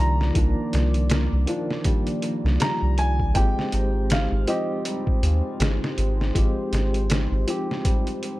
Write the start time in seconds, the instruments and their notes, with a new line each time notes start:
Already playing: tine electric piano D#3 F3 A#3 D4, analog synth pad D#3 A#3 F4 D5, felt piano F3 G3
0.00 sub bass C2, felt piano A#5
0.21 snare
0.34 sub bass C2, tine electric piano D#3 F3 A#3 D4, felt piano F3, kick, closed hi-hat
0.73 sub bass C2, snare, closed hi-hat
0.94 closed hi-hat
1.10 snare, closed hi-hat
1.32 sub bass C2
1.46 tine electric piano D#3 F3 A#3 D4, felt piano F3, closed hi-hat
1.71 snare
1.84 felt piano G3, kick, closed hi-hat
2.07 closed hi-hat
2.22 closed hi-hat
2.44 sub bass C2, snare
2.60 felt piano G3 A#5, snare, closed hi-hat
2.82 sub bass C2
2.98 felt piano G#5, closed hi-hat
3.19 kick
3.34 sub bass G#1, felt piano F3 G5, tine electric piano G#3 C4 G4, analog synth pad D#4 G4 C5, kick, closed hi-hat
3.59 snare
3.72 sub bass G#1, closed hi-hat
4.10 felt piano F5, snare, closed hi-hat
4.32 sub bass G#1
4.47 felt piano F3 D#5, tine electric piano C4 G4, closed hi-hat
4.85 felt piano G3, closed hi-hat
5.07 kick
5.22 sub bass D#2, closed hi-hat
5.60 sub bass G#1, felt piano G#3, snare, closed hi-hat
5.84 snare
5.98 sub bass G#1, closed hi-hat
6.21 snare
6.35 sub bass G#1, felt piano F3, tine electric piano G#3 C4 G4, kick, closed hi-hat
6.72 sub bass G#1, snare, closed hi-hat
6.94 closed hi-hat
7.10 snare, closed hi-hat
7.31 sub bass G#1
7.47 felt piano F3, tine electric piano C4 G4, closed hi-hat
7.71 snare
7.85 felt piano G3, kick, closed hi-hat
8.07 closed hi-hat
8.23 closed hi-hat